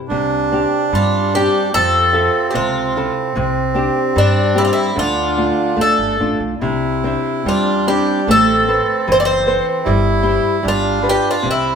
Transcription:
0.08 C2 C3 D4
0.52 C4 D4 G4
0.93 G2 G3 F4
1.34 C4 D4 G4
1.73 F2 F3 C4 A4
2.13 F4 A4 E5
2.51 C3 G4
2.55 C#2 F4
2.97 E4 F4 A4
3.36 C2 C3 C4
3.74 C4 D4 G4
4.16 G2 G3 D4
4.55 C4 D4 E4 G4
4.65 F4
4.73 E4
4.96 D2 D3 D4 F4
5.37 A3 D4 F4
5.77 D2 A3
5.81 A4
5.99 G1
6.20 A1 A3 D4 F4
6.40 B1
6.60 C2 C3 E4
7.04 C4 D4 E5
7.45 E2 G3 D4 F4
7.87 C4 D4 E4 G4
8.27 A1 A3 C4 A4
8.68 A4 B4 C5
9.08 F#1 E3
9.12 C5
9.20 D5
9.25 C5
9.47 A4 B4 C5
9.85 G1 G3 E4
10.23 E4 G4 C5
10.63 G1 G3 D4
10.68 F4
11.02 F4 G4 B4
11.09 G4
11.31 F4
11.43 C2 C3 C4
11.51 E4

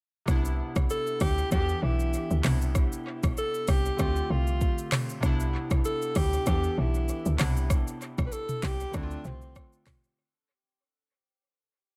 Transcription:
0.26 C2 C3 B3 D4, kick, cross-stick, shaker
0.31 E4
0.45 shaker
0.76 C2, kick, cross-stick, shaker
0.90 A4, shaker
1.07 shaker
1.20 D2 G4, kick, cross-stick, open hi-hat, shaker
1.38 shaker
1.51 E2 E3 B3 D4 F#4 G4, kick, cross-stick, shaker
1.60 G4
1.69 shaker
1.83 B1 E4
2.00 shaker
2.13 shaker
2.31 D2, shaker
2.42 C2 C3 B3 D4, cross-stick, clap, mid tom, open hi-hat, shaker
2.47 E4
2.62 shaker
2.75 kick, cross-stick, shaker
2.92 shaker
3.23 B1, kick, cross-stick, shaker
3.37 A4, shaker
3.54 shaker
3.67 C2 G4, kick, cross-stick, open hi-hat, shaker
3.85 shaker
3.97 D2 D3 A3 C4 G4, kick, cross-stick, shaker
4.02 F4
4.16 shaker
4.30 C2 F4
4.47 shaker
4.61 kick, shaker
4.78 shaker
4.92 cross-stick, clap, mid tom, open hi-hat, shaker
5.09 shaker
5.20 C2 C3 B3 D4, kick, cross-stick, shaker
5.26 E4
5.40 shaker
5.71 C2, kick, cross-stick, shaker
5.85 A4, shaker
6.02 shaker
6.15 D2 G4, kick, cross-stick, open hi-hat, shaker
6.33 shaker
6.46 E2 E3 B3 D4 G4, kick, cross-stick, shaker
6.63 shaker
6.78 B1 E4
6.94 shaker
7.08 shaker
7.26 D2, shaker
7.37 C2 C3 B3 D4, cross-stick, clap, mid tom, open hi-hat, shaker
7.42 E4
7.57 shaker
7.70 kick, cross-stick, shaker
7.88 shaker
8.01 shaker
8.18 B1, kick, cross-stick, shaker
8.26 B4
8.32 A4, shaker
8.49 mid tom, shaker
8.62 C2 G4, kick, cross-stick, clap, open hi-hat, shaker
8.80 shaker
8.92 D2 D3 A3 C4 D4, kick, cross-stick, shaker
8.97 E4
9.03 F4
9.11 shaker
9.25 C2 C4, mid tom, shaker
9.42 shaker
9.55 kick, cross-stick, shaker
9.73 shaker
9.86 kick, cross-stick, clap, mid tom, open hi-hat, shaker
10.04 shaker

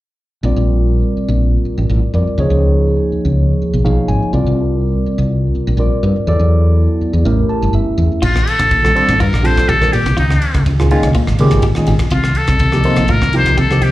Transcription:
0.43 A#1 G3 C4 F4 A#4 D5
0.56 A#1
1.17 muted fretless electric bass stroke
1.28 A#1
1.65 muted fretless electric bass stroke
1.78 A1
1.90 A1
2.14 F2 G3 C4 F4 A#4 D5
2.27 muted fretless electric bass stroke
2.38 C#2 F3 A#3 D#4 G#4 C#5
2.50 C#2
3.12 muted fretless electric bass stroke
3.25 C#2
3.62 muted fretless electric bass stroke
3.73 B1
3.84 B1 F3 A#3 D#4 G#4 C#5 F5
4.08 G#1 G#5
4.22 muted fretless electric bass stroke
4.33 C2 G3 C4 F4 A#4 D5
4.47 C2
5.06 muted fretless electric bass stroke
5.18 C2
5.55 muted fretless electric bass stroke
5.67 A#1
5.77 A#1 G3 C4 F4 A#4 D5
6.03 G2
6.16 muted fretless electric bass stroke
6.27 E2 F#3 B3 E4 A4 D5
6.39 E2
7.01 muted fretless electric bass stroke
7.13 E2
7.24 A1 A3 C#4 E4 G4 A#4
7.49 A5, muted fretless electric bass stroke
7.62 G1
7.73 G1 E5
7.98 E2
8.12 muted fretless electric bass stroke
8.22 A#1 F4, kick, crash
8.36 cross-stick
8.47 A4, ride
8.59 A#1, kick, cross-stick, ride
8.71 A#1, kick, ride
8.83 D3 G3 C4 F4 A4, cross-stick
8.95 D3 G3 C4 F4 A4, ride
9.09 A1, kick, cross-stick, ride
9.19 G2 F4 A4 A#4, kick, ride
9.33 A#1, cross-stick
9.43 D3 G3 C4 F4 A4 C5, ride
9.57 kick, cross-stick, ride
9.69 A#1 G4 A4, kick, ride
9.81 D3 G3 C4 F4 A#4, cross-stick
9.93 A#2 G4, ride
10.06 C2 F4 A4, kick, cross-stick, ride
10.17 C#2 D#4 F4, kick, ride
10.31 cross-stick
10.42 ride
10.54 C#2, kick, cross-stick, ride
10.66 C#2, kick, ride
10.80 A#2 D#3 G#3 C#4 F4, cross-stick
10.91 A#2 D#3 G#3 C#4 F4, ride
11.03 C#2, kick, cross-stick, ride
11.15 A#2 C#4 F4, kick, ride
11.27 G#1, cross-stick
11.39 A#2 C#3 D#3 G#3 C#4 G4, ride
11.51 G#1, kick, cross-stick, ride
11.62 G4, kick, ride
11.75 A#2 D#3 G#3 C#4 G#4, muted fretless electric bass stroke, cross-stick
11.87 G#1 G4, ride
11.99 C#4 F4, muted fretless electric bass stroke, kick, cross-stick, ride
12.10 C2 F4, kick, ride
12.24 cross-stick
12.35 A4, ride
12.47 C2, kick, cross-stick, ride
12.59 C2, kick, ride
12.72 C3 F3 A#3 D#4 G4, cross-stick
12.84 C3 F3 A#3 D#4 F4, ride
12.96 A#1, kick, cross-stick, ride
13.08 A2 D#4 F4 A4 A#4, kick, ride
13.21 C2, cross-stick
13.33 C3 F3 A#3 D#4 G4, ride
13.37 C5
13.46 kick, cross-stick, ride
13.57 C2 G4 A4, kick, ride
13.71 C3 F3 A#3 D#4 G4, cross-stick
13.81 C3 G4, ride

